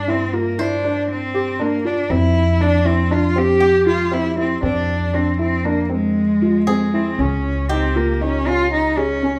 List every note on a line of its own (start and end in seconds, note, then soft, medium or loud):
0.00 2.05 G2 medium
0.00 0.11 D4 medium
0.00 0.93 G4 soft
0.00 0.43 A#4 soft
0.08 0.36 C4 medium
0.08 0.23 E4 medium
0.33 0.62 A#3 medium
0.33 0.48 F4 medium
0.59 1.09 D4 medium
0.59 0.74 E4 medium
0.59 2.57 C5 medium
0.84 1.13 D4 medium
1.10 1.63 C4 medium
1.34 1.49 G4 medium
1.59 1.88 A#3 medium
1.59 1.74 D4 medium
1.85 2.13 D4 medium
1.85 1.99 F4 medium
2.10 4.59 F2 medium
2.10 2.39 C4 medium
2.10 2.63 E4 medium
2.61 2.75 D4 medium
2.61 2.88 D4 medium
2.85 3.15 C4 medium
2.85 3.00 E4 medium
3.11 3.26 D4 medium
3.11 3.39 F4 medium
3.36 3.65 C4 medium
3.36 3.87 G4 loud
3.60 5.96 G4 medium
3.86 4.01 F4 medium
3.86 4.15 F4 medium
4.12 4.26 C4 medium
4.12 4.38 E4 medium
4.37 4.62 C4 medium
4.37 4.52 E4 medium
4.62 7.15 F2 medium
4.62 4.92 C4 medium
4.62 5.16 D4 medium
5.13 5.39 C4 medium
5.13 5.28 D4 medium
5.39 5.66 C4 medium
5.39 5.54 E4 medium
5.65 5.90 A#3 medium
5.65 5.80 D4 medium
5.90 6.96 G#3 medium
5.90 6.19 C4 medium
6.42 6.57 F4 medium
6.67 6.82 C4 medium
6.67 7.75 G#4 medium
6.94 7.22 C4 medium
6.94 7.09 E4 medium
7.19 9.39 C#2 medium
7.19 7.48 C#4 medium
7.19 7.70 C#4 medium
7.69 7.98 C4 medium
7.69 7.85 D#4 medium
7.69 9.39 G4 medium
7.96 8.23 A#3 medium
7.96 8.10 F4 medium
8.21 8.49 C#4 medium
8.21 8.36 D#4 medium
8.47 8.76 C#4 medium
8.47 8.72 F4 loud
8.73 9.00 D#4 medium
8.97 9.39 C#4 medium
8.97 9.12 G#4 medium
9.23 9.38 C#4 medium